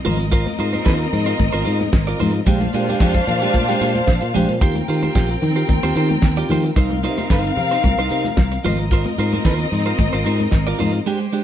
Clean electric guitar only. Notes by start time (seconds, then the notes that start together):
0.05 F4 A#4 C5
0.20 muted clean electric guitar stroke
0.32 F4 A#4 C5
0.47 muted clean electric guitar stroke
0.59 F4 A#4 C5
0.73 F4 A#4 C5
0.85 F4 A#4 C5
0.99 muted clean electric guitar stroke
1.12 muted clean electric guitar stroke
1.26 F4 A#4 C5
1.39 muted clean electric guitar stroke
1.53 F4 A#4 C5
1.65 F4 A#4 C5
1.79 muted clean electric guitar stroke
1.93 muted clean electric guitar stroke
2.07 F4 A#4 D5
2.19 F4 A#4 C5
2.34 muted clean electric guitar stroke
2.47 G#3 D4 G4
2.61 muted clean electric guitar stroke
2.74 G#3 D4 G4
2.89 G#3 D4 G4
3.01 G#3 D4 G4
3.16 muted clean electric guitar stroke
3.29 muted clean electric guitar stroke
3.42 G#3 D4 G4
3.55 muted clean electric guitar stroke
3.69 G#3 D4 G4
3.81 G#3 D4 G4
3.95 muted clean electric guitar stroke
4.07 muted clean electric guitar stroke
4.21 muted clean electric guitar stroke
4.34 G#3 D4 G4
4.49 muted clean electric guitar stroke
4.61 F4 G4 C5
4.76 muted clean electric guitar stroke
4.88 F4 G4 C5
5.03 F4 G4 C5
5.15 F4 G4 C5
5.30 muted clean electric guitar stroke
5.42 muted clean electric guitar stroke
5.56 F4 G4 C5
5.69 muted clean electric guitar stroke
5.83 F4 G4 C5
5.96 F4 G4 C5
6.10 muted clean electric guitar stroke
6.24 muted clean electric guitar stroke
6.37 F4 G4 D5
6.50 F4 G4 C5
6.65 muted clean electric guitar stroke
6.76 D#4 A#4 C5
6.91 muted clean electric guitar stroke
7.03 D#4 A#4 C5
7.18 D#4 A#4 C5
7.30 D#4 A#4 C5
7.45 muted clean electric guitar stroke
7.57 muted clean electric guitar stroke
7.71 D#4 A#4 C5
7.84 muted clean electric guitar stroke
7.99 D#4 A#4 C5
8.11 D#4 A#4 C5
8.25 muted clean electric guitar stroke
8.37 muted clean electric guitar stroke
8.52 muted clean electric guitar stroke
8.65 F4 A#4 C5
8.79 muted clean electric guitar stroke
8.92 F4 A#4 C5
9.06 muted clean electric guitar stroke
9.18 F4 A#4 C5
9.33 F4 A#4 C5
9.45 F4 A#4 C5
9.60 muted clean electric guitar stroke
9.72 muted clean electric guitar stroke
9.86 F4 A#4 C5
9.99 muted clean electric guitar stroke
10.13 F4 A#4 C5
10.25 F4 A#4 C5
10.41 muted clean electric guitar stroke
10.52 muted clean electric guitar stroke
10.67 F4 A#4 D5
10.79 F4 A#4 C5
10.93 muted clean electric guitar stroke
11.06 G#3 D4 G4
11.20 muted clean electric guitar stroke
11.32 G#3 D4 G4